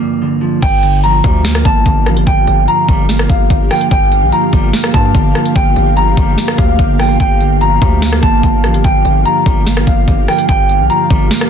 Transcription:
Already playing: clean electric guitar D3 F3 A#3
0.01 clean electric guitar G2
0.22 clean electric guitar D3
0.41 clean electric guitar F3
0.62 808-style bass G1, clean electric guitar G2 G5, ambient pad A#3 G4 F5, kick, closed hi-hat, crash
0.83 clean electric guitar D3, closed hi-hat
1.04 clean electric guitar F3 A#5, closed hi-hat
1.24 808-style bass D2, clean electric guitar G3, kick, closed hi-hat
1.44 clean electric guitar A#3, snare, closed hi-hat
1.55 cross-stick
1.65 808-style bass G1, clean electric guitar G2 A5, kick, closed hi-hat
1.86 808-style bass G1, clean electric guitar D3, kick, closed hi-hat
2.06 808-style bass A1, clean electric guitar F3, cross-stick, closed hi-hat
2.17 808-style bass G1, closed hi-hat
2.27 808-style bass G1, clean electric guitar G2 G5, kick, closed hi-hat
2.47 808-style bass G1, clean electric guitar D3, closed hi-hat
2.68 clean electric guitar F3 A#5, closed hi-hat
2.89 808-style bass G1, clean electric guitar G3, kick, closed hi-hat
3.09 clean electric guitar A#3, snare, closed hi-hat
3.19 cross-stick
3.29 808-style bass G1, clean electric guitar G2 F5, kick, closed hi-hat
3.50 808-style bass G1, clean electric guitar D3, kick, closed hi-hat
3.70 clean electric guitar F3 G5, cross-stick, closed hi-hat, open hi-hat
3.81 closed hi-hat
3.91 808-style bass G1, clean electric guitar G2 G5, kick, closed hi-hat
4.12 clean electric guitar D3, closed hi-hat
4.22 808-style bass A#1
4.32 clean electric guitar F3 A#5, closed hi-hat
4.53 808-style bass G1, clean electric guitar G3, kick, closed hi-hat
4.73 clean electric guitar A#3, snare, closed hi-hat
4.84 cross-stick
4.94 clean electric guitar G2 A5, 808-style bass G2, kick, closed hi-hat
5.15 808-style bass G1, clean electric guitar D3, kick, closed hi-hat
5.35 clean electric guitar F3, cross-stick, closed hi-hat
5.45 closed hi-hat
5.56 808-style bass G1, clean electric guitar G2 G5, kick, closed hi-hat
5.76 808-style bass G1, clean electric guitar D3, closed hi-hat
5.96 clean electric guitar F3 A#5, closed hi-hat
6.17 808-style bass G1, clean electric guitar G3, kick, closed hi-hat
6.38 clean electric guitar A#3, snare, closed hi-hat
6.48 cross-stick
6.58 808-style bass D2, clean electric guitar G2 F5, kick, closed hi-hat
6.79 808-style bass G1, clean electric guitar D3, kick, closed hi-hat
6.99 clean electric guitar F3 G5, cross-stick, open hi-hat
7.20 808-style bass G1, clean electric guitar G2 G5, kick, closed hi-hat
7.41 clean electric guitar D3, closed hi-hat
7.61 clean electric guitar F3 A#5, closed hi-hat
7.82 808-style bass D2, clean electric guitar G3, kick, closed hi-hat
8.02 clean electric guitar A#3, snare, closed hi-hat
8.12 cross-stick
8.23 808-style bass G1, clean electric guitar G2 A5, kick, closed hi-hat
8.43 808-style bass G1, clean electric guitar D3, kick, closed hi-hat
8.63 808-style bass A1, clean electric guitar F3, cross-stick, closed hi-hat
8.74 808-style bass G1, closed hi-hat
8.84 808-style bass G1, clean electric guitar G2 G5, kick, closed hi-hat
9.05 808-style bass G1, clean electric guitar D3, closed hi-hat
9.25 clean electric guitar F3 A#5, closed hi-hat
9.46 808-style bass G1, clean electric guitar G3, kick, closed hi-hat
9.67 clean electric guitar A#3, snare, closed hi-hat
9.77 cross-stick
9.87 808-style bass G1, clean electric guitar G2 F5, kick, closed hi-hat
10.08 808-style bass G1, clean electric guitar D3, kick, closed hi-hat
10.28 clean electric guitar F3 G5, cross-stick, closed hi-hat, open hi-hat
10.39 closed hi-hat
10.49 808-style bass G1, clean electric guitar G2 G5, ambient pad A#3 G4 F5, kick, closed hi-hat
10.69 clean electric guitar D3, closed hi-hat
10.80 808-style bass A#1
10.90 clean electric guitar F3 A#5, closed hi-hat
11.10 808-style bass G1, clean electric guitar G3, kick, closed hi-hat
11.31 clean electric guitar A#3, snare, closed hi-hat
11.41 cross-stick

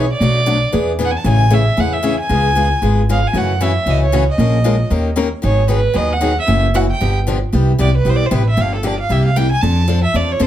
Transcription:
Already playing: upright bass B1, violin C#5
0.13 violin D5
0.20 upright bass B1, steel-string acoustic guitar B2 F#3 A3 D4 F#4
0.46 steel-string acoustic guitar B2 F#3 A3 D4 F#4
0.72 upright bass E2, steel-string acoustic guitar E3 B3 D4 G#4
0.99 steel-string acoustic guitar E3 B3 D4 G#4
1.04 violin F#5
1.11 violin G#5
1.17 violin A5
1.24 upright bass A1, steel-string acoustic guitar C#3 E3 A3 C#4 G#4
1.28 violin G#5
1.50 steel-string acoustic guitar C#3 E3 A3 C#4 G#4, violin E5
1.77 upright bass E2, steel-string acoustic guitar C#3 E3 A3 C#4 G#4, violin F#5
1.93 violin E5
2.03 steel-string acoustic guitar C#3 E3 A3 C#4 G#4
2.20 violin G#5
2.29 upright bass C#2, steel-string acoustic guitar C#3 G#3 B3 F4 G#4
2.55 steel-string acoustic guitar C#3 G#3 B3 F4 G#4
2.82 upright bass G#1, steel-string acoustic guitar C#3 G#3 B3 F4 G#4
3.09 steel-string acoustic guitar C#3 G#3 B3 F4 G#4, violin F5
3.27 violin G#5
3.33 upright bass F#2, steel-string acoustic guitar C#3 E3 A3 C#4 F#4
3.37 violin F#5
3.61 steel-string acoustic guitar C#3 E3 A3 C#4 F#4, violin E5
3.86 upright bass C#2, steel-string acoustic guitar C#3 E3 A3 C#4 F#4
3.90 violin D#5
4.05 violin C#5
4.12 steel-string acoustic guitar C#3 E3 A3 C#4 F#4
4.31 violin D#5
4.38 upright bass A#1, steel-string acoustic guitar F3 G#3 C#4 F4 A#4
4.64 steel-string acoustic guitar F3 G#3 C#4 F4 A#4
4.90 upright bass D#2, steel-string acoustic guitar D#3 A#3 C#4 G4 A#4
5.16 steel-string acoustic guitar D#3 A#3 C#4 G4 A#4
5.42 upright bass G#1, steel-string acoustic guitar D#3 F#3 B3 D#4 G#4, violin C#5
5.68 steel-string acoustic guitar D#3 F#3 B3 D#4 G#4, violin B4
5.94 upright bass D#2, steel-string acoustic guitar D#3 F#3 B3 D#4 G#4, violin D#5
6.13 violin F#5
6.21 steel-string acoustic guitar D#3 F#3 B3 D#4 G#4
6.39 violin E5
6.47 upright bass F#1, steel-string acoustic guitar C#3 E3 A3 C#4 F#4
6.74 steel-string acoustic guitar C#3 E3 A3 C#4 F#4, violin F#5
6.91 violin G5
7.00 upright bass G1, steel-string acoustic guitar D3 F3 B3 D4 G4
7.27 steel-string acoustic guitar D3 F3 B3 D4 G4
7.52 upright bass C2, steel-string acoustic guitar C3 G3 B3 E4 G4
7.79 upright bass C2, steel-string acoustic guitar C3 G3 B3 E4 G4, violin D5
7.97 violin B4
8.05 upright bass B1, steel-string acoustic guitar C3 G3 B3 E4 G4
8.09 violin C5
8.16 violin D5
8.26 violin C5
8.31 upright bass A1, steel-string acoustic guitar C3 G3 B3 E4 G4, violin B4
8.50 violin E5
8.57 upright bass G1, steel-string acoustic guitar D3 F3 A#3 D4 G4
8.61 violin F5
8.75 violin A4
8.83 steel-string acoustic guitar D3 F3 A#3 D4 G4, violin D5
9.00 violin F5
9.09 upright bass C2, steel-string acoustic guitar C3 G3 A#3 E4 G4, violin E5
9.25 violin F5
9.36 steel-string acoustic guitar C3 G3 A#3 E4 G4, violin G5
9.52 violin G#5
9.62 upright bass F2, steel-string acoustic guitar F3 C4 D4 A4, violin A5
9.88 steel-string acoustic guitar F3 C4 D4 A4
10.04 violin E5
10.14 upright bass E2, steel-string acoustic guitar F3 C4 D4 A4, violin D5
10.32 violin C#5
10.40 upright bass F2, steel-string acoustic guitar F3 C4 D4 A4, violin C5

